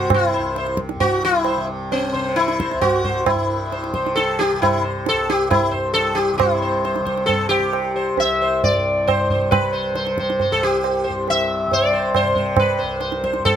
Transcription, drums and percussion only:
0.10 tabla na loud
0.10 tabla ge medium
0.56 tabla te medium
0.67 tabla te medium
0.77 tabla ke medium
0.89 tabla te medium
1.00 tabla tin medium
1.00 tabla ge medium
1.44 tabla na medium
1.92 tabla tin medium
2.36 tabla te medium
2.48 tabla te medium
2.60 tabla ke medium
2.71 tabla te medium
2.82 tabla na medium
2.82 tabla ge medium
3.05 tabla ge medium
3.26 tabla na loud
3.26 tabla ge loud
3.72 tabla te medium
3.84 tabla te medium
3.94 tabla ke medium
4.06 tabla te medium
4.17 tabla te medium
4.41 tabla te medium
4.63 tabla na medium
4.63 tabla ge medium
5.06 tabla te medium
5.30 tabla te medium
5.51 tabla na medium
5.51 tabla ge medium
5.96 tabla te medium
6.18 tabla te medium
6.40 tabla na loud
6.40 tabla ge loud
6.85 tabla te medium
6.96 tabla te medium
7.07 tabla ke medium
7.18 tabla te medium
7.29 tabla tin medium
7.29 tabla ge medium
7.51 tabla na medium
7.73 tabla na medium
8.18 tabla tin medium
8.64 tabla tin medium
8.64 tabla ge medium
9.08 tabla na medium
9.08 tabla ge medium
9.30 tabla ge medium
9.52 tabla na loud
9.52 tabla ge loud
9.96 tabla te medium
10.07 tabla te medium
10.18 tabla ke medium
10.30 tabla te medium
10.40 tabla tin medium
10.40 tabla ge medium
10.84 tabla na medium
11.28 tabla tin medium
11.71 tabla tin medium
11.71 tabla ge medium
12.15 tabla na medium
12.15 tabla ge medium
12.36 tabla ge soft
12.57 tabla na loud
12.57 tabla ge medium
13.01 tabla te medium
13.12 tabla te medium
13.24 tabla ke medium
13.34 tabla te medium
13.45 tabla tin medium
13.45 tabla ge medium

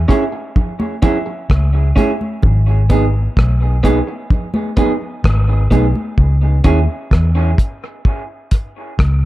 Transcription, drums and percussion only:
0.09 kick medium
0.09 closed hi-hat medium
0.56 kick loud
0.56 low conga medium
0.80 high conga medium
1.02 kick medium
1.02 closed hi-hat medium
1.02 low conga medium
1.50 kick loud
1.50 cross-stick loud
1.50 high conga soft
1.97 kick medium
1.97 closed hi-hat medium
1.97 high conga medium
2.21 high conga soft
2.43 kick loud
2.43 low conga medium
2.90 kick medium
2.90 closed hi-hat medium
2.90 low conga medium
3.37 kick loud
3.37 cross-stick loud
3.37 high conga soft
3.84 kick medium
3.84 closed hi-hat medium
4.30 kick loud
4.30 low conga medium
4.54 high conga medium
4.77 kick loud
4.77 closed hi-hat medium
4.77 low conga medium
5.24 kick loud
5.24 cross-stick loud
5.24 high conga soft
5.71 kick medium
5.71 closed hi-hat medium
5.71 high conga medium
5.95 high conga medium
6.18 kick loud
6.64 kick medium
6.64 closed hi-hat medium
7.11 kick loud
7.11 cross-stick loud
7.58 kick loud
7.58 closed hi-hat medium
8.05 kick loud
8.51 kick medium
8.51 closed hi-hat medium
8.99 kick loud
8.99 cross-stick loud

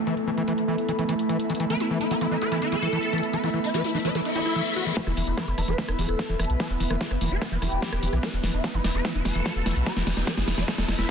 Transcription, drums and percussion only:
0.07 closed hi-hat medium
0.17 closed hi-hat medium
0.37 closed hi-hat medium
0.48 closed hi-hat medium
0.58 closed hi-hat medium
0.78 closed hi-hat medium
0.88 closed hi-hat medium
0.99 closed hi-hat medium
1.09 closed hi-hat medium
1.19 closed hi-hat medium
1.29 closed hi-hat soft
1.39 closed hi-hat medium
1.50 closed hi-hat soft
1.55 closed hi-hat medium
1.60 closed hi-hat medium
1.70 closed hi-hat medium
1.80 closed hi-hat soft
2.01 closed hi-hat soft
2.11 closed hi-hat medium
2.21 closed hi-hat medium
2.42 closed hi-hat soft
2.52 closed hi-hat medium
2.62 closed hi-hat medium
2.72 closed hi-hat medium
2.82 closed hi-hat medium
2.93 closed hi-hat soft
3.03 closed hi-hat medium
3.13 closed hi-hat soft
3.18 closed hi-hat medium
3.23 closed hi-hat medium
3.33 closed hi-hat medium
3.44 closed hi-hat soft
3.64 closed hi-hat soft
3.74 closed hi-hat medium
3.84 closed hi-hat soft
4.05 closed hi-hat soft
4.15 closed hi-hat medium
4.25 closed hi-hat soft
4.35 closed hi-hat medium
4.46 closed hi-hat soft
4.56 closed hi-hat soft
4.66 closed hi-hat soft
4.76 closed hi-hat soft
4.81 closed hi-hat medium
4.86 closed hi-hat medium
4.97 kick loud
4.97 snare soft
4.97 closed hi-hat medium
5.07 cross-stick soft
5.07 closed hi-hat medium
5.17 open hi-hat loud
5.27 closed hi-hat medium
5.37 kick loud
5.37 cross-stick medium
5.37 snare soft
5.37 closed hi-hat medium
5.48 closed hi-hat medium
5.58 cross-stick soft
5.58 open hi-hat loud
5.68 closed hi-hat medium
5.78 kick loud
5.78 snare medium
5.78 closed hi-hat medium
5.88 cross-stick medium
5.88 closed hi-hat medium
5.99 open hi-hat loud
6.09 cross-stick soft
6.09 closed hi-hat medium
6.19 kick loud
6.19 snare medium
6.19 closed hi-hat soft
6.29 closed hi-hat medium
6.39 cross-stick medium
6.39 open hi-hat loud
6.45 closed hi-hat medium
6.50 closed hi-hat medium
6.60 kick loud
6.60 cross-stick soft
6.60 snare medium
6.60 closed hi-hat medium
6.70 closed hi-hat medium
6.80 open hi-hat loud
6.90 cross-stick medium
6.90 closed hi-hat medium
7.01 kick loud
7.01 snare medium
7.01 closed hi-hat medium
7.11 cross-stick soft
7.11 closed hi-hat medium
7.21 open hi-hat loud
7.31 closed hi-hat medium
7.42 kick loud
7.42 cross-stick medium
7.42 snare medium
7.42 closed hi-hat medium
7.52 closed hi-hat medium
7.62 cross-stick soft
7.62 open hi-hat loud
7.72 closed hi-hat medium
7.82 kick loud
7.82 snare medium
7.82 closed hi-hat soft
7.93 cross-stick medium
7.93 closed hi-hat medium
8.03 open hi-hat loud
8.08 closed hi-hat medium
8.13 cross-stick soft
8.13 closed hi-hat medium
8.23 kick loud
8.23 snare medium
8.23 closed hi-hat medium
8.33 closed hi-hat medium
8.44 snare medium
8.44 open hi-hat loud
8.54 closed hi-hat medium
8.64 kick loud
8.64 snare medium
8.64 closed hi-hat medium
8.74 closed hi-hat medium
8.84 snare medium
8.84 open hi-hat loud
8.95 closed hi-hat medium
9.05 kick loud
9.05 snare medium
9.05 closed hi-hat medium
9.15 closed hi-hat medium
9.25 snare medium
9.25 open hi-hat loud
9.35 closed hi-hat medium
9.46 kick loud
9.46 snare medium
9.46 closed hi-hat soft
9.56 closed hi-hat medium
9.66 snare medium
9.66 open hi-hat loud
9.71 closed hi-hat medium
9.76 closed hi-hat medium
9.86 kick loud
9.86 snare medium
9.86 closed hi-hat medium
9.97 snare medium
9.97 closed hi-hat medium
10.07 snare loud
10.07 open hi-hat loud
10.17 snare medium
10.17 closed hi-hat medium
10.27 kick loud
10.27 snare medium
10.27 closed hi-hat medium
10.37 snare medium
10.37 closed hi-hat medium
10.48 snare loud
10.48 open hi-hat loud
10.58 snare medium
10.58 closed hi-hat medium
10.68 kick loud
10.68 snare loud
10.68 closed hi-hat medium
10.78 snare medium
10.78 closed hi-hat medium
10.88 snare loud
10.88 open hi-hat loud
10.99 snare loud

